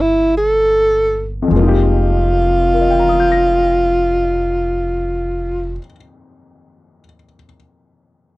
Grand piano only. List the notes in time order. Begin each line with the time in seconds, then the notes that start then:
Already playing: A#2 D4 E4 A4
1.42 F2
1.48 F3
1.52 G#3
1.56 A#3
1.63 D#4
1.68 G4
2.74 A#4
2.81 D#5
2.90 G5
2.99 A#5
3.09 D#6
3.20 G6
3.32 A#6